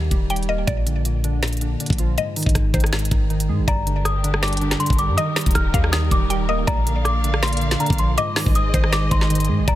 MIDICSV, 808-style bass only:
0, 0, Header, 1, 2, 480
1, 0, Start_track
1, 0, Tempo, 375000
1, 865, Time_signature, 4, 2, 24, 8
1, 12484, End_track
2, 0, Start_track
2, 0, Title_t, "808-style bass"
2, 0, Program_c, 0, 38
2, 145, Note_on_c, 0, 27, 103
2, 836, Note_off_c, 0, 27, 0
2, 866, Note_on_c, 0, 34, 111
2, 2254, Note_off_c, 0, 34, 0
2, 2434, Note_on_c, 0, 34, 99
2, 2772, Note_off_c, 0, 34, 0
2, 3155, Note_on_c, 0, 32, 102
2, 3258, Note_off_c, 0, 32, 0
2, 3265, Note_on_c, 0, 32, 110
2, 3496, Note_off_c, 0, 32, 0
2, 3505, Note_on_c, 0, 32, 104
2, 3966, Note_off_c, 0, 32, 0
2, 3986, Note_on_c, 0, 32, 109
2, 4466, Note_on_c, 0, 44, 96
2, 4485, Note_off_c, 0, 32, 0
2, 4594, Note_on_c, 0, 32, 99
2, 4613, Note_off_c, 0, 44, 0
2, 4700, Note_off_c, 0, 32, 0
2, 4707, Note_on_c, 0, 31, 107
2, 6095, Note_off_c, 0, 31, 0
2, 6274, Note_on_c, 0, 31, 105
2, 6514, Note_on_c, 0, 43, 103
2, 6533, Note_off_c, 0, 31, 0
2, 6620, Note_off_c, 0, 43, 0
2, 6994, Note_on_c, 0, 27, 104
2, 7098, Note_off_c, 0, 27, 0
2, 7106, Note_on_c, 0, 27, 112
2, 7336, Note_off_c, 0, 27, 0
2, 7345, Note_on_c, 0, 39, 109
2, 7806, Note_off_c, 0, 39, 0
2, 7826, Note_on_c, 0, 27, 106
2, 8517, Note_off_c, 0, 27, 0
2, 8545, Note_on_c, 0, 34, 112
2, 9934, Note_off_c, 0, 34, 0
2, 10113, Note_on_c, 0, 34, 103
2, 10452, Note_off_c, 0, 34, 0
2, 10834, Note_on_c, 0, 32, 100
2, 11172, Note_off_c, 0, 32, 0
2, 11185, Note_on_c, 0, 32, 106
2, 11646, Note_off_c, 0, 32, 0
2, 11665, Note_on_c, 0, 32, 108
2, 12146, Note_on_c, 0, 44, 98
2, 12165, Note_off_c, 0, 32, 0
2, 12275, Note_on_c, 0, 32, 96
2, 12294, Note_off_c, 0, 44, 0
2, 12381, Note_off_c, 0, 32, 0
2, 12386, Note_on_c, 0, 31, 111
2, 12484, Note_off_c, 0, 31, 0
2, 12484, End_track
0, 0, End_of_file